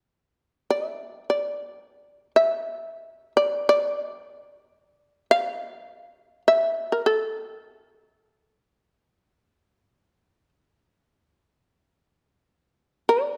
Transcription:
shamisen
0.70 E5
1.30 D5
2.36 E5
3.37 D5
3.69 D5
3.97 D#5
4.15 E5
5.31 F5
6.48 E5
6.92 A#4
7.06 A4
13.09 D5

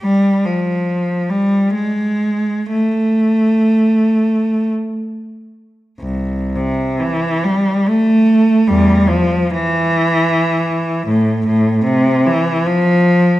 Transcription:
cello
0.01 G3
0.45 F3
1.29 G3
1.74 G#3
2.71 A3
6.00 C2
6.55 C3
7.00 E3
7.44 G3
7.88 A3
8.68 E2 G3
9.09 F3
9.50 E3
11.07 A2
11.46 A2
11.84 C3
12.26 E3
12.66 F3

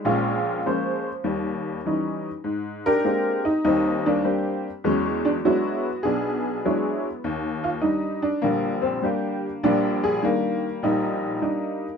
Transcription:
honky-tonk piano
0.05 A#1 A#2 G#3 C#4 F4
0.66 F3 G#3 A#3 C#4 C5
1.24 D#2 G3
1.85 E3 G3 C#4 D#4
2.44 G#2
2.86 D4 G4 A#4
3.04 G#3 A#3 C4 D4 G4
3.45 D#4
3.65 D#2 G3 C4 D#4
4.06 G3 A#3 D4
4.24 G3 A#3 C4 D4 G4
4.84 E2 F#3 G#3 C#4
5.25 D4
5.45 F#3 G#3 B3 D4 E4 F#4 C#5
6.03 B1 B3 D4 G#4
6.65 F#3 G#3 D4 E4 C#5
7.24 D#2
7.64 F4
7.81 G3 D4 D#4
8.22 D4
8.42 A#1 D3 G3 A#3
8.82 C4
9.02 G3 A#3 D4 G4
9.63 A#1 G3 A#3 D4
10.04 G#4
10.23 D#3 G3 A#3 D4
10.83 A#1 G3 A#3 D#4
11.42 G3 D4 D#4

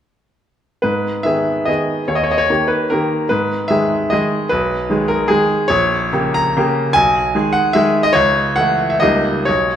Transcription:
grand piano
0.82 G#2 B4
1.23 D#3 B3 G#4 E5
1.65 D#3 B3 G#4 D#5
2.08 D#2 C#5
2.15 D#5
2.23 C#5
2.31 D#5
2.38 C#5
2.50 D#3 A#3 G4
2.68 B4
2.90 D#3 A#3 G4 A#4
3.29 G#2 B4
3.68 D#3 G#3 G#4 E5
4.10 D#3 G#3 G#4 D#5
4.49 B1 B4
4.90 D#3 G#3 G#4
5.08 A#4
5.28 D#3 G#3 G#4
5.68 A#1 C#5
6.13 C#3 A#3 G4
6.34 A#5
6.57 C#3 A#3 G4
6.93 B1 G#5
7.35 D#3 G#3 G#4
7.53 F#5
7.73 D#3 G#3 G#4 E5
8.03 D#5
8.13 C#2 C#5
8.56 E3 A3 E4 F#5
8.90 E5
9.00 C#2 G3 A#3 D#4 D#5
9.45 B1 C#5

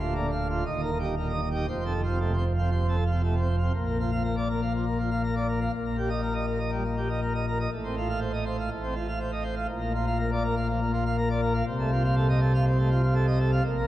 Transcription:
pipe organ
Already playing: D1 D2
0.00 F4
0.15 D3 A#3
0.32 F5
0.50 F4
0.66 D#1 D#2 D#5
0.79 D#4 A#4
0.99 G4
1.03 D#4
1.16 A#2 A#3
1.29 D#4
1.33 D#5
1.51 D#4 G4
1.68 F1 F2 C5
1.81 C4
1.86 A4
2.03 C4 F4
2.20 C3 A3
2.33 C4
2.37 C5
2.55 C4 F4
2.71 C3 C5
2.85 C4
2.89 A4
3.06 F4
3.11 C4
3.23 C3 A3
3.36 C4
3.41 C5
3.58 C4 F4
3.73 A#1 A#2
3.87 A#3
4.00 F4
4.12 F5
4.24 A#4
4.37 D5
4.50 A#4
4.61 F5
4.73 F3
4.86 A#3
4.99 F4
5.11 F5
5.24 A#4
5.36 D5
5.48 A#4
5.61 F5
5.73 A#1 A#2
5.85 A#3
5.98 G4
6.10 D#5
6.22 A#4
6.34 D#5
6.47 A#4
6.59 D#5
6.71 G3
6.84 A#3
6.96 G4
7.09 D#5
7.22 A#4
7.35 D#5
7.48 A#4
7.60 D#5
7.72 A1 A2
7.84 C4
7.97 F4
8.09 F5
8.21 C5
8.33 D#5
8.46 C5
8.59 F5
8.71 A1 A2
8.83 C4
8.96 F4
9.08 F5
9.20 C5
9.32 D#5
9.43 C5
9.56 F5
9.68 A#1 A#2
9.81 A#3
9.94 F4
10.07 F5
10.19 A#4
10.32 D5
10.44 A#4
10.56 F5
10.69 F3
10.81 A#3
10.93 F4
11.06 F5
11.18 A#4
11.30 D5
11.42 A#4
11.54 F5
11.67 C2 C3
11.79 A3
11.92 F4
12.04 F5
12.16 A4
12.29 D#5
12.41 A4
12.54 F5
12.67 C4
12.78 A3
12.91 F4
13.03 F5
13.15 A4
13.27 D#5
13.39 A4
13.52 F5
13.64 A#1 A#2
13.77 A#3

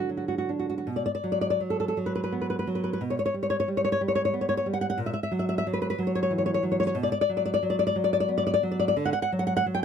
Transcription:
nylon-string guitar
Already playing: D3 D4
0.09 F#3
0.17 F#4
0.28 F#4
0.38 F#4
0.49 D4
0.59 F#4
0.70 F#4
0.78 F#4
0.87 B2
0.96 D5
1.06 D5
1.15 D5
1.24 F#3
1.32 D5
1.41 D5
1.50 D5
1.60 F#3
1.70 A4
1.80 A4
1.88 A4
1.97 F#3
2.06 B4
2.15 B4
2.24 B4
2.32 B3
2.41 B4
2.50 B4
2.59 B4
2.67 F#3
2.75 B4
2.84 B4
2.93 B4
3.01 B2
3.10 C#5
3.19 C#5
3.26 C#5
3.34 G3
3.43 C#5
3.50 C#5
3.60 C#5
3.68 G3
3.77 C#5
3.85 C#5
3.92 C#5
4.01 G3
4.08 C#5
4.15 C#5
4.25 C#5
4.34 B3
4.41 C#5
4.49 C#5
4.57 C#5
4.66 G3
4.73 F#5
4.81 F#5
4.90 F#5
4.98 A#2
5.06 E5
5.14 E5
5.23 E5
5.31 F#3
5.39 E5
5.49 E5
5.58 E5
5.67 F#3
5.73 B4
5.82 B4
5.90 B4
5.99 F#3
6.07 C#5
6.15 C#5
6.23 C#5
6.31 E3
6.38 C#5
6.46 C#5
6.54 C#5
6.63 F#3
6.72 C#5
6.80 C#5
6.87 C#5
6.95 B2
7.03 D5
7.12 D5
7.21 D5
7.29 F#3
7.37 D5
7.45 D5
7.54 D5
7.63 F#3
7.70 D5
7.79 D5
7.87 D5
7.96 F#3
8.04 D5
8.13 D5
8.20 D5
8.29 B3
8.38 D5
8.47 D5
8.54 D5
8.63 F#3
8.71 D5
8.79 D5
8.88 D5
8.96 D3
9.05 F#5
9.13 F#5
9.22 F#5
9.32 F#3
9.39 F#5
9.47 F#5
9.57 F#5
9.66 F#3
9.75 G5

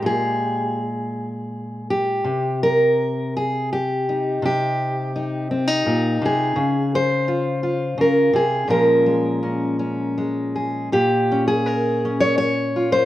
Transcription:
steel-string acoustic guitar
Already playing: G#3 G4
0.02 A#2 G#4
1.90 G4
2.24 C3
2.63 A#4
3.37 G#4
3.73 G4
4.09 D#4
4.42 C3 G4
5.16 D#4
5.51 C4
5.68 D#4
5.86 A#2
6.22 C3 G#4
6.56 C#3
6.95 C5
7.28 F4
7.63 F4
7.98 C#3 A#4
8.33 C3 G#4
8.68 A#2 F3 G#3 C#4 A#4
9.06 G#3
9.43 C#4
9.79 C#4
10.18 G#3
10.56 G#4
10.92 A#2 G4
11.32 C#4
11.48 G#4
11.66 A#4
12.05 C#4
12.20 C#5
12.38 C#5
12.76 F4
12.92 C5

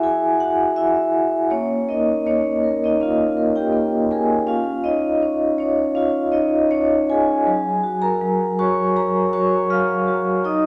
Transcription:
vibraphone
Already playing: E4 F#4 G#4 E5 F#5 G#5
0.03 E4 G#4 G#5
0.40 F#4 E5 F#5
0.76 E4 E5
1.13 E5
1.50 A#3 C#4 C#5
1.89 D#4 A#4 D#5
2.26 A#3 C#4 C#5
2.63 A#4
2.84 D#4 D#5
3.01 A#3 F4 F5
3.37 A#4
3.56 G4 G5
3.73 A#3
4.11 G#4 A#4 G#5
4.47 C#4 F4 F5
4.84 D#4 C#5 D#5
5.22 C#4
5.58 C#4 C#5
5.95 C#4 F4 F5
6.32 D#4 C#5 D#5
6.71 C#4 C#5
7.10 G#4 C#5 G#5
7.46 F#3
7.83 F#4
8.02 A#4 A#5
8.21 F#3
8.59 F#4 C#5 C#6
8.96 F#3 A#4 A#5
9.33 F#4 C#5 C#6
9.70 F#3 F5 F6
10.08 F#4
10.44 D#4 D#5 D#6

